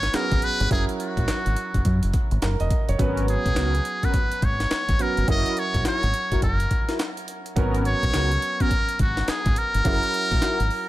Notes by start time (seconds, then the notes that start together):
Already playing: F#3 B3 C#4 B4 C#5
0.03 snare, closed hi-hat
0.13 F#3 B3 C#4 G#4 A#4, snare, clap, closed hi-hat
0.31 G#1, kick, closed hi-hat
0.42 B4, closed hi-hat
0.60 G1, closed hi-hat
0.70 F#1 F#3 C#4 E4 G#4 A#4, kick, closed hi-hat
0.89 closed hi-hat
1.00 F#4, closed hi-hat
1.17 A#1, kick, closed hi-hat
1.28 muted fingered electric bass stroke, snare, clap, closed hi-hat
1.46 G#1, closed hi-hat
1.56 closed hi-hat
1.74 F#1, kick, closed hi-hat
1.85 F#2, kick, closed hi-hat
2.03 F#1, closed hi-hat
2.13 kick, closed hi-hat
2.31 G#1, closed hi-hat
2.42 F#1 A#4, snare, clap, closed hi-hat
2.60 E1 D#5, closed hi-hat
2.70 kick, closed hi-hat
2.89 F#1 C#5, closed hi-hat
2.98 G#1 F#3 B3 C#4 F#4 A#4 B4, kick, closed hi-hat
3.17 closed hi-hat
3.28 G#4, closed hi-hat
3.46 B1, kick, closed hi-hat
3.56 C#2 B3 C#4 F#4 A#4, snare, clap, closed hi-hat
3.75 closed hi-hat
3.85 closed hi-hat
4.03 B3 C#4 F#4 A#4 B4, kick, closed hi-hat
4.14 kick, closed hi-hat
4.32 closed hi-hat
4.42 G#1 C#5, kick, closed hi-hat
4.60 snare, closed hi-hat
4.71 snare, clap, closed hi-hat
4.89 G#1, kick, closed hi-hat
4.99 F#3 B3 C#4 F#4 A#4, closed hi-hat
5.17 G1, closed hi-hat
5.27 F#1 F#3 C#4 E4 F#4 A#4 D#5, kick, closed hi-hat
5.46 closed hi-hat
5.57 C#5, closed hi-hat
5.74 A#1, kick, closed hi-hat
5.85 E4 F#4 A#4 C#5, muted fingered electric bass stroke, snare, clap, closed hi-hat
6.03 G#1, closed hi-hat
6.14 closed hi-hat
6.31 F#1 E4 F#4 A#4, kick, closed hi-hat
6.42 F#1 A#4, kick, closed hi-hat
6.60 closed hi-hat
6.71 kick, closed hi-hat
6.88 E4 F#4 A#4, snare, closed hi-hat
6.99 snare, clap, closed hi-hat
7.17 closed hi-hat
7.28 closed hi-hat
7.46 closed hi-hat
7.56 G#1 F#3 B3 C#4 F#4 A#4, kick, closed hi-hat
7.74 closed hi-hat
7.85 C#5, closed hi-hat
8.03 B1, kick, closed hi-hat
8.14 C#2 B3 C#4 F#4 A#4, snare, clap, closed hi-hat
8.32 closed hi-hat
8.42 closed hi-hat
8.60 B3 C#4 F#4 A#4, kick, closed hi-hat
8.71 kick, closed hi-hat
8.89 closed hi-hat
8.99 G#1 F#4, kick, closed hi-hat
9.17 snare, closed hi-hat
9.28 G#4, muted fingered electric bass stroke, snare, clap, closed hi-hat
9.46 G#1, kick, closed hi-hat
9.56 A#4, closed hi-hat
9.74 G1, closed hi-hat
9.84 F#1 F#3 C#4 E4 F#4 G#4 A#4, kick, closed hi-hat
9.93 A#4
10.03 closed hi-hat
10.14 closed hi-hat
10.31 A#1, kick, closed hi-hat
10.42 E4 F#4 A#4, snare, clap, closed hi-hat
10.60 G#1, closed hi-hat
10.71 open hi-hat